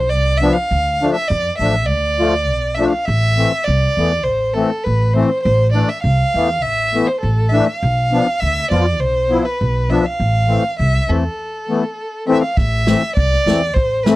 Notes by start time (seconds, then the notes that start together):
Already playing: B1 C5
0.09 C2 D5
0.38 E5
0.42 F3 B3 D4
0.53 F5
0.71 D2
1.02 F3 A3 D4
1.14 E5
1.28 F2 D5
1.58 A1 F3 A3 D4 E5
1.86 D2 D5
2.20 F3 A3 F4
2.49 B1
2.75 F3 A3 D4 E5
2.90 F5
3.06 A1 E5
3.36 E3 A3 C4
3.64 C2 D5
3.97 E2 E3 A3 B3
4.24 A1 C5
4.54 E3 A3 C4 A4
4.84 A1 B4
5.13 E3 A3 C4 C5
5.43 A1 C5
5.72 E3 A3 D4 D5
5.89 E5
6.03 C2 F5
6.34 E2 E3 A3 B3
6.62 A1 E5
6.94 E3 A3 B3
7.07 C5
7.20 A1 A4
7.50 E3 A3 D4 E5
7.64 E5
7.75 F5
7.83 B1
8.12 F3 B3 D4
8.40 D2 E5
8.70 F2 F3 B3 F4 D5
9.00 B1 C5
9.29 F3 B3 E4
9.45 B4
9.61 B1
9.90 F3 B3 D4 E5
10.06 F5
10.20 A1
10.48 E3 A3 C4
10.79 C2 E5
11.08 E2 E3 A3 C4 A4
11.69 E3 A3 B3
12.28 E3 A3 C4 E5
12.42 F5
12.57 A1 E5, kick, snare
12.87 E3 A3 C4, snare
13.02 snare
13.16 C2 D5, kick
13.32 snare
13.46 E2 E3 A3 C4, snare
13.74 A1 C5, kick
14.03 E3 A3 B4, snare
14.07 C4